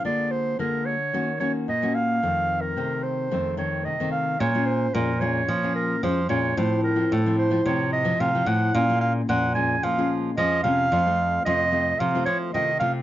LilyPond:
<<
  \new Staff \with { instrumentName = "Clarinet" } { \time 4/4 \key bes \minor \tempo 4 = 110 d''8 c''8 bes'8 des''4 des''8 ees''8 f''8~ | f''8. bes'8. c''4 des''8 ees''8 f''8 | des''8 c''8 bes'8 des''4 bes'8 c''8 des''8 | c''8 bes'8 a'8 c''8 des''8 ees''8 f''8 ges''8 |
f''8 f''8 ges''8 aes''8 f''8 r8 ees''8 f''8~ | f''4 ees''4 f''8 des''8 ees''8 f''8 | }
  \new Staff \with { instrumentName = "Nylon-string guitar" } { \time 4/4 \key bes \minor << { <aes bes f'>4 <aes bes f'>8. r16 <bes des' ges'>16 r16 <bes des' ges'>8 r16 <bes des' ges'>8. | <ees a c'>4 <ees a c'>4 <ees a c'>8 <ees a c'>8. <ees a c'>8. | <aes des' f'>16 <aes des' f'>8. <aes des' f'>16 r16 <aes des' f'>8 r16 <aes des' f'>8. <aes des' f'>16 r16 <aes des' f'>8 | <f c' f'>8. <f c' f'>8 <f c' f'>8 <f c' f'>16 <f c' f'>8. <f c' f'>8 <f c' f'>8. |
<aes des' f'>16 <aes des' f'>8. <aes des' f'>16 r16 <aes des' f'>8. <aes des' f'>8. <aes des' f'>8 <aes des' f'>8 | <a c' f'>16 <a c' f'>8. <a c' f'>16 r16 <a c' f'>8. <a c' f'>8. <a c' f'>16 r16 <a c' f'>16 r16 | } \\ { d4 d4 ees4 bes,4 | f,4 c4 f,4 c4 | bes,4 f,4 bes,4 f,4 | a,4 a,4 a,4 a,4 |
bes,4 f,4 bes,4 f,4 | f4 c4 f4 c4 | } >> }
  \new Staff \with { instrumentName = "Nylon-string guitar" } { \clef bass \time 4/4 \key bes \minor r1 | r1 | bes,4 bes,4 f4 f8 bes,8 | a,4 a,4 c4 c8 a,8 |
bes,4 bes,4 f4 f8 c8 | f,4 f,4 c8 f8 ees8 c8 | }
>>